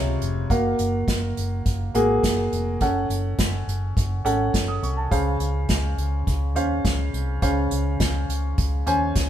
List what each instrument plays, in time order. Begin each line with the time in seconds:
Already playing: fingered electric bass C#2, grand piano C3 C#3 C4 F4 C#5 D#5
0.21 fingered electric bass F1, closed hi-hat
0.50 fingered electric bass F#1, grand piano A#3 F#4 F5, kick, closed hi-hat
0.79 fingered electric bass F#1, closed hi-hat
1.08 fingered electric bass F#1, kick, snare, closed hi-hat
1.37 fingered electric bass F#1, closed hi-hat
1.66 fingered electric bass F#1, kick, closed hi-hat
1.94 fingered electric bass G#1, grand piano A#3 F#4 G#4, closed hi-hat
2.23 fingered electric bass F#1, kick, snare, closed hi-hat
2.52 fingered electric bass F1, closed hi-hat
2.81 fingered electric bass F#1, grand piano C#4 A4 F#5, kick, closed hi-hat
3.10 fingered electric bass F#1, closed hi-hat
3.39 fingered electric bass F#1, kick, snare, closed hi-hat
3.67 fingered electric bass F#1, closed hi-hat
3.97 fingered electric bass F#1, kick, closed hi-hat
4.25 fingered electric bass G#1, grand piano C#4 A4 F#5, closed hi-hat
4.54 fingered electric bass F#1, kick, snare, closed hi-hat
4.68 grand piano D#6
4.83 fingered electric bass C2, grand piano C#6, closed hi-hat
4.97 grand piano A5
5.11 fingered electric bass C#2, grand piano C#3 C#4 C5 F5, kick, closed hi-hat
5.40 fingered electric bass C#2, closed hi-hat
5.69 fingered electric bass C#2, kick, snare, closed hi-hat
5.98 fingered electric bass C#2, closed hi-hat
6.27 fingered electric bass C#2, kick, closed hi-hat
6.56 fingered electric bass D#2, grand piano C#4 C5 F5, closed hi-hat
6.85 fingered electric bass C#2, kick, snare, closed hi-hat
7.13 fingered electric bass C2, closed hi-hat
7.42 fingered electric bass C#2, grand piano C#3 C#4 C5 F5, kick, closed hi-hat
7.71 fingered electric bass C#2, closed hi-hat
8.00 fingered electric bass C#2, kick, snare, closed hi-hat
8.29 fingered electric bass C#2, closed hi-hat
8.58 fingered electric bass C#2, kick, closed hi-hat
8.87 fingered electric bass D#2, grand piano C#4 C5 G#5, closed hi-hat
9.16 fingered electric bass C#2, kick, snare, closed hi-hat